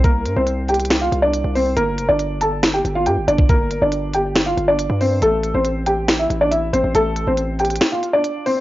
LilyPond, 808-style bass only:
\new Staff \with { instrumentName = "808-style bass" } { \clef bass \time 4/4 \key g \dorian \tempo 4 = 139 c,8 g,16 c,4.~ c,16 c,8. c,8. | g,,8 f,,16 g,,4.~ g,,16 g,,8 g,16 g,,16 g,,8~ | g,,8. g,,4.~ g,,16 g,,8. g,8. | a,,8. a,,4.~ a,,16 a,,4 a,,16 a,,16 |
a,,8. a,,4~ a,,16 r2 | }